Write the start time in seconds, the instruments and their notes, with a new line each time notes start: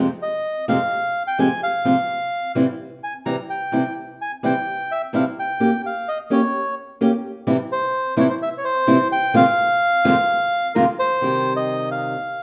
0.22 bandoneon D#5
0.68 nylon-string guitar F2 C3 F3 G#3 C4 G4, bandoneon F5
1.27 bandoneon G5
1.38 nylon-string guitar F2 C3 F3 G#3 C4 G4, bandoneon G#5
1.63 bandoneon F5
1.85 nylon-string guitar C3 F3 G#3 C4 F4
2.55 nylon-string guitar C3 E3 G3 C4 E4
3.04 bandoneon G#5
3.26 nylon-string guitar C3 E3 G3 C4 E4, bandoneon A#5
3.50 bandoneon G5
3.72 nylon-string guitar C3 E3 G3 C4 E4
4.22 bandoneon G#5
4.43 nylon-string guitar C3 E3 G3 C4 E4, bandoneon G5
4.92 bandoneon E5
5.13 nylon-string guitar C3 E3 G3 C4 E4, bandoneon F5
5.39 bandoneon G5
5.60 nylon-string guitar A#3 C#4 G4
5.86 bandoneon F5
6.08 bandoneon D#5
6.30 nylon-string guitar A#3 C#4 G4, bandoneon C#5
7.01 nylon-string guitar A#3 C#4 G4
7.47 nylon-string guitar C3 E3 G3 C4 E4
7.72 bandoneon C5
8.17 nylon-string guitar C3 E3 G3 C4 E4, bandoneon C#5
8.30 bandoneon C5
8.42 bandoneon E5
8.58 bandoneon C#5
8.65 bandoneon C5
8.87 nylon-string guitar C3 E3 G3 C4 E4
9.12 bandoneon G5
9.34 nylon-string guitar F2 C3 D#3 G#3 C4 F4, bandoneon F5
10.04 nylon-string guitar F2 C3 D#3 G#3 C4 F4
10.75 nylon-string guitar F2 C3 D#3 G#3 C4 F4, bandoneon A#4
10.99 bandoneon C5
11.21 nylon-string guitar C3 D#3 G3 C4 G4
11.57 bandoneon D#5
11.91 bandoneon F5